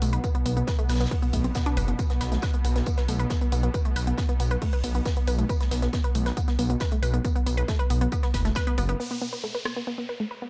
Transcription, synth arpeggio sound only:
0.02 A3
0.13 B4
0.24 B3
0.35 B3
0.46 B3
0.57 B3
0.68 B4
0.79 A3
0.89 B4
1.00 B3
1.11 B3
1.22 B3
1.33 A3
1.44 C4
1.55 B3
1.66 D4
1.77 B4
1.88 B3
1.99 B3
2.10 B3
2.21 B4
2.32 A3
2.43 B4
2.54 B3
2.65 B3
2.76 B3
2.87 B3
2.98 B4
3.09 A3
3.19 B4
3.30 B3
3.41 B3
3.52 B3
3.63 B3
3.74 B4
3.85 A3
3.96 B4
4.07 B3
4.18 B3
4.29 B3
4.40 B3
4.51 B4
4.62 A3
4.73 B4
4.84 B3
4.95 B3
5.06 B3
5.17 B3
5.28 B4
5.39 A3
5.50 B4
5.61 B3
5.71 B3
5.82 B3
5.93 B3
6.04 B4
6.15 A3
6.26 B4
6.37 B3
6.48 B3
6.59 B3
6.70 B3
6.81 B4
6.92 A3
7.03 B4
7.14 B3
7.24 B3
7.36 B3
7.46 B3
7.57 B4
7.68 A3
7.79 B4
7.90 B3
8.01 B3
8.12 B3
8.23 B3
8.34 B4
8.45 A3
8.56 B4
8.67 B3
8.78 B3
8.89 B3
9.00 B3
9.11 B3
9.22 B3
9.33 B4
9.44 A3
9.55 B4
9.65 B3
9.76 B3
9.87 B3
9.98 B3
10.09 B4
10.20 A3
10.31 B4
10.42 B3

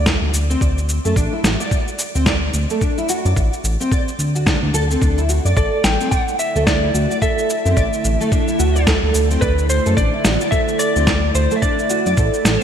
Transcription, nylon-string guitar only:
Already playing: D5
0.50 C4
0.61 D5
1.05 A3
1.16 D4
1.33 E4
1.44 F#4
1.60 D5
2.15 C4
2.26 D5
2.70 A3
2.81 D4
2.98 E4
3.09 F#4
3.25 D5
3.80 C4
3.91 D5
4.35 F#4
4.46 D4
4.63 D4
4.74 A4
4.90 C4
5.01 D4
5.18 E4
5.29 F#4
5.45 D5
5.56 A4
6.00 C4
6.12 D5
6.55 A3
6.67 D4
6.83 E4
6.94 F#4
7.11 D5
7.21 A4
7.65 C4
7.77 D5
8.20 A3
8.32 D4
8.48 E4
8.59 F#4
8.76 D5
8.87 A4
9.31 C4
9.42 D5
9.86 A3
9.97 D4
10.13 E4
10.24 F#4
10.41 D5
10.52 A4
10.96 C4
11.07 D5
11.51 A3
11.62 D4
11.79 E4
11.90 F#4
12.06 D5
12.18 A4

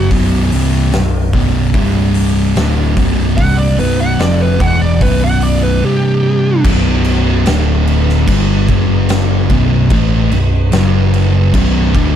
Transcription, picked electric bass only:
0.11 B0
0.53 C1
0.94 B0
1.33 B0
1.74 C1
2.57 D1
2.97 B0
3.38 C1
3.80 B0
4.19 F1
4.60 E1
5.01 B0
6.65 B0
7.47 D1
8.28 G1
8.69 F#1
9.50 B0
9.91 A1
10.32 B0
10.73 F#1
11.54 B0
11.95 D1

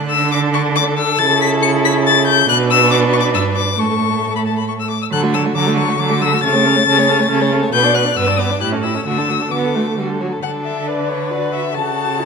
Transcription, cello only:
Already playing: D3
1.20 C#3
2.49 B2
3.35 G2
3.79 A2
5.11 D3
5.56 D3
5.99 D3
6.44 C#3
6.87 C#3
7.30 C#3
7.73 B2
8.17 G2
8.61 A2
9.06 D3
9.52 D3
9.98 D3
10.44 D3
11.75 C#3

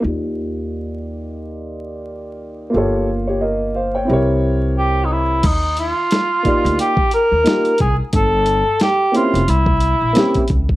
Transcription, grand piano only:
0.00 A#3 D#4
0.04 F4 G4 D5
2.70 A#3 F4 G4
2.76 A4 C#5
3.27 G4 C#5
3.41 A#4 D#5
3.75 C5 F5
3.95 C#5 G5
4.05 C4 E4
4.09 G4 A#4 C#5
6.43 A#3 D#4 F4 G4 D5
7.44 A#3 D#4 F4 G4 A#4
9.12 A#3 C4 C#4 E4
9.16 G4
10.13 A#3 C4 C#4 E4 G4

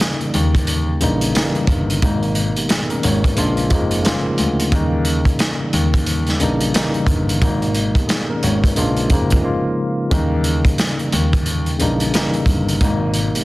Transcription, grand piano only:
0.34 D#2
1.02 A#1
1.68 G1
2.03 G#1
3.04 G#1
3.38 A#1
3.71 F#1
4.39 D2
4.72 D#2
5.73 D#2
6.41 A#1
7.07 G1
7.42 G#1
8.43 G#1
8.77 A#1
9.10 F#1
10.12 D#2
11.13 D#2
11.80 A#1
12.46 G1
12.81 G#1

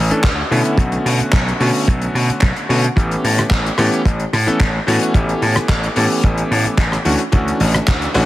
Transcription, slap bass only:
Already playing: A1
0.11 muted slap bass stroke
0.24 D2
0.51 B2
0.77 B1
1.05 B2
1.20 muted slap bass stroke
1.33 B1
1.60 B2
1.88 B1
2.15 B2
2.29 muted slap bass stroke
2.42 B1
2.69 B2
2.97 A1
3.24 A2
3.51 A1
3.78 A2
4.05 A1
4.33 A2
4.47 muted slap bass stroke
4.60 A1
4.87 A2
5.14 A1
5.42 A2
5.57 muted slap bass stroke
5.69 A1
5.96 A2
6.24 A1
6.51 A2
6.65 muted slap bass stroke
6.78 A1
7.05 D2
7.33 D2
7.60 A1
7.88 D2
8.15 A1

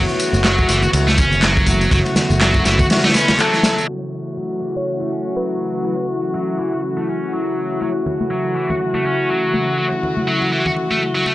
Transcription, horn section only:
Already playing: A3 E4 F#4
0.94 A3 E4 F#4
1.68 A3 E4 F#4
1.92 A3 E4 F#4
2.90 A3 E4 F#4
3.15 A3 E4 B4
3.39 A3 E4 A4
3.88 A3 E4 F#4
7.82 A3 E4 F#4

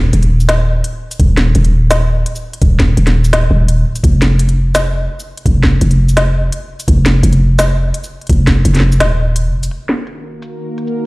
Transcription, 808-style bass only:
Already playing: D#1
0.13 D#1
1.20 D#1
1.55 D#1
2.62 D#1
2.97 D#1
3.51 D#1
4.04 F1
5.46 F1
5.81 F1
6.88 F1
7.23 F1
8.30 F1
8.65 F1
9.01 D#1
9.45 F1

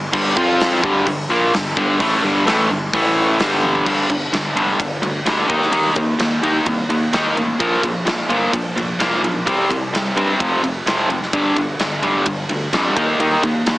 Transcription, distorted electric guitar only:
0.12 G2 D3 G3
0.36 F3 C4 F4
0.83 G2 D3 G3
1.07 G2 D3
1.30 A#2 F3 A#3
1.54 G2 D3
1.77 G2 D3 G3
2.00 A2 E3 A3
2.23 G2 D3 G3
2.46 A2 E3 A3
2.70 G2 D3
2.94 A2 E3 A3
3.40 G2 D3 G3
3.86 G2 D3 G3
4.10 G2 D3
4.33 G2 D3
4.56 G2 D3 G3
4.79 G2 D3
5.02 G2 D3
5.26 G2 D3 G3
5.48 D#3 A#3 D#4
5.72 D#3 A#3 D#4
5.95 D#3 A#3
6.19 D#3 A#3
6.43 D#3 A#3 D#4
6.67 D#3 A#3
6.89 D#3 A#3
7.13 D#3 A#3 D#4
7.37 D#3 A#3
7.59 A#2 F3 A#3
7.82 A#2 F3
8.05 A#2 F3
8.29 A#2 F3 A#3
8.53 A#2 F3
8.76 A#2 F3
8.99 A#2 F3 A#3
9.24 A#2 F3
9.47 C3 G3 C4
9.71 C3 G3
9.94 C3 G3
10.17 C3 G3 C4
10.40 F2 C3 F3
10.63 F2 C3
10.86 F2 C3 F3
11.10 F2 C3
11.33 G2 D3 G3
11.57 G2 D3
11.80 G2 D3
12.02 G2 D3 G3
12.26 G2 D3
12.49 G2 D3
12.73 G2 D3 G3
12.96 D#3 A#3 D#4
13.20 D#3 A#3 D#4
13.43 D#3 A#3
13.67 D#3 A#3

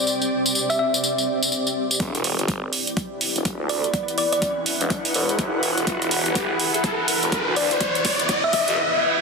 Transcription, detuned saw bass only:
2.00 E1
2.39 G1
3.36 E1
3.60 D2
4.81 E1
5.14 E1
5.39 F#1
5.63 E1
5.87 E1
6.26 G1
7.23 E1
7.47 D2
8.68 E1

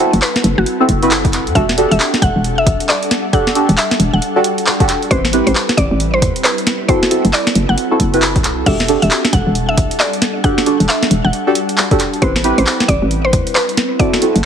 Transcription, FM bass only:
0.13 F#1
0.44 F#1
0.58 F#1
0.89 F#1
1.47 F#2
1.55 E1
1.91 E1
2.22 E1
2.36 E1
2.66 B1
3.69 E1
4.00 E1
4.13 E1
5.11 A1
5.47 A1
5.78 A1
5.91 A1
6.22 E2
7.25 F#1
7.55 F#1
7.69 F#1
8.00 F#1
8.36 C2
8.66 E1
9.02 E1
9.33 E1
9.47 E1
9.77 B1
10.80 E1
11.11 E1
11.25 E1
12.22 A1
12.58 A1
12.89 A1
13.02 A1
13.33 E2
14.36 F#1

